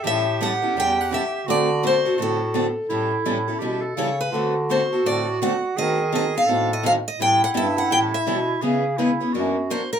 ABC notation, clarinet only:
X:1
M:4/4
L:1/16
Q:"Swing" 1/4=168
K:Amix
V:1 name="Clarinet"
G16 | F8 F4- F z3 | E8 G2 A4 z2 | F16 |
^G8 A4- A z3 | E16 | ^G4 E4 F6 z2 |]